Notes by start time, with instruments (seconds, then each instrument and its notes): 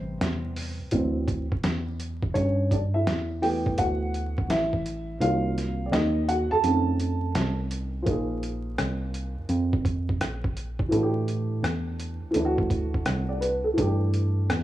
Already playing: tine electric piano A1, upright piano C3 G3 C4 B4 C5
0.21 tine electric piano E2, snare, closed hi-hat
0.56 open hi-hat
0.80 tine electric piano D2
0.91 tine electric piano D2, upright piano E3 F#3 C4, kick, closed hi-hat
1.28 kick, closed hi-hat
1.52 tine electric piano E2, kick
1.64 tine electric piano E2, snare, closed hi-hat
2.00 closed hi-hat
2.23 kick
2.34 tine electric piano G2, upright piano C#4 C#5, kick, closed hi-hat
2.71 upright piano D4 D5, kick, closed hi-hat
2.94 upright piano E4 E5
3.06 tine electric piano E2, snare, closed hi-hat
3.42 upright piano E3 A3 B3 G4 G5, open hi-hat
3.66 kick
3.78 tine electric piano D2, upright piano F#4 F#5, kick, closed hi-hat
4.14 closed hi-hat
4.38 kick
4.49 tine electric piano A1, upright piano E4 E5, snare, closed hi-hat
4.73 kick
4.86 closed hi-hat
5.20 tine electric piano C2, upright piano D#3 F#3 A#3 F4 F5, closed hi-hat
5.58 snare, closed hi-hat
5.86 upright piano D5
5.91 tine electric piano D#2, upright piano D#4 D#5, snare, closed hi-hat
6.28 upright piano F#4 F#5, closed hi-hat
6.51 tine electric piano F2, upright piano A4 A5
6.63 tine electric piano F2, upright piano D#3 A3 C#4, closed hi-hat
7.00 closed hi-hat
7.35 tine electric piano C2, snare, closed hi-hat
7.71 closed hi-hat
8.02 tine electric piano A#1, upright piano F3 A#3
8.06 upright piano D#4 G#4, kick, closed hi-hat
8.43 closed hi-hat
8.78 tine electric piano C2, cross-stick, closed hi-hat
9.14 closed hi-hat
9.38 tine electric piano F2
9.49 tine electric piano F2, closed hi-hat
9.73 kick
9.85 kick, closed hi-hat
10.09 kick
10.21 tine electric piano A#1, cross-stick, closed hi-hat
10.44 kick
10.57 closed hi-hat
10.79 kick
10.89 tine electric piano A2, upright piano E3 A3, closed hi-hat
10.94 upright piano D4 F#4
11.03 upright piano G4
11.28 closed hi-hat
11.63 tine electric piano E2, cross-stick, closed hi-hat
12.00 closed hi-hat
12.22 tine electric piano D2
12.31 upright piano E3 A3, closed hi-hat
12.35 tine electric piano D2, upright piano D4 E4
12.45 upright piano F#4
12.58 kick
12.70 kick, closed hi-hat
12.94 kick
13.06 tine electric piano C2, cross-stick, closed hi-hat
13.29 upright piano D5
13.41 upright piano B4, closed hi-hat
13.64 tine electric piano C2, upright piano A4
13.73 upright piano E3 A3
13.78 tine electric piano G2, upright piano D4 G4, kick, closed hi-hat
14.14 closed hi-hat
14.50 tine electric piano E2, cross-stick, closed hi-hat